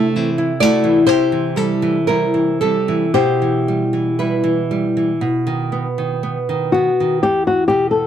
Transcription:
0.00 1.03 C3 medium
0.00 0.29 A3 medium
0.00 0.16 D4 medium
0.00 0.57 A4 medium
0.00 0.56 E5 loud
0.16 0.52 E3 medium
0.16 0.62 C4 medium
0.38 0.75 E4 medium
0.60 0.98 A3 medium
0.60 1.09 E4 medium
0.60 1.05 F#4 medium
0.60 1.06 D5 loud
0.84 1.08 E3 medium
1.07 3.10 C3 medium
1.07 2.03 E4 medium
1.07 1.57 G4 medium
1.07 2.03 C5 loud
1.32 1.72 E3 medium
1.56 1.97 G3 medium
1.56 3.14 A4 medium
1.82 2.23 E3 medium
2.07 2.50 G3 medium
2.07 2.57 E4 medium
2.07 2.58 A#4 medium
2.34 2.76 E3 medium
2.61 3.04 G3 medium
2.61 3.11 C4 medium
2.61 3.12 A4 medium
2.88 3.14 E3 medium
3.14 5.16 B2 medium
3.14 4.14 E4 medium
3.14 6.68 G4 medium
3.14 4.13 C5 loud
3.42 3.82 E3 medium
3.68 4.08 G3 medium
3.93 4.33 E3 medium
4.19 4.59 G3 medium
4.19 6.69 E4 medium
4.19 6.69 B4 medium
4.44 4.84 E3 medium
4.71 5.11 G3 medium
4.97 5.21 E3 medium
5.21 7.18 B2 medium
5.47 5.86 D#3 medium
5.72 6.11 B3 medium
5.98 6.37 D#3 medium
6.23 6.63 B3 medium
6.49 6.89 D#3 medium
6.72 7.13 B3 medium
6.72 7.18 F#4 medium
7.00 7.23 D#3 medium
7.23 8.07 E2 medium
7.23 7.44 G4 medium
7.47 7.67 F#4 medium
7.68 8.07 B2 soft
7.68 7.89 G4 medium
7.91 8.07 A4 medium

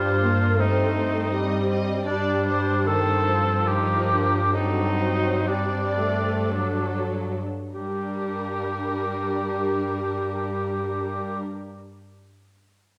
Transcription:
0.00 2.02 G2 soft
0.00 0.23 G3 soft
0.00 0.58 D4 soft
0.00 0.62 F4 medium
0.00 0.58 C5 soft
0.23 0.60 A#3 soft
0.59 1.32 A3 soft
0.59 0.95 C4 soft
0.59 1.69 D#4 medium
0.59 1.31 C5 soft
0.97 2.04 C4 soft
1.32 2.04 G3 soft
1.32 1.68 D#5 soft
1.69 2.05 D#5 soft
2.05 7.36 G2 soft
2.05 2.85 G3 soft
2.05 2.83 D4 medium
2.05 2.87 D4 soft
2.05 2.45 D5 soft
2.46 2.86 C5 soft
2.87 3.27 D#3 soft
2.87 3.68 C4 soft
2.87 3.69 A4 medium
2.87 3.66 C5 soft
3.28 4.53 F3 soft
3.68 4.09 D#4 soft
3.68 4.53 G4 medium
3.68 4.52 A#4 soft
4.10 4.53 D4 soft
4.53 5.45 F#3 soft
4.53 5.47 C4 soft
4.53 5.49 D#4 medium
4.53 4.99 A4 soft
5.00 5.47 C5 soft
5.47 5.97 G3 soft
5.47 6.50 C4 soft
5.47 7.13 D4 soft
5.47 6.51 D5 soft
5.98 6.52 A3 soft
6.52 7.41 F#3 soft
6.52 7.41 D4 soft
6.52 7.41 A4 soft
7.74 11.41 G2 soft
7.74 11.41 G3 soft
7.74 11.43 D4 soft
7.74 11.42 G4 soft
7.74 11.42 A#4 soft

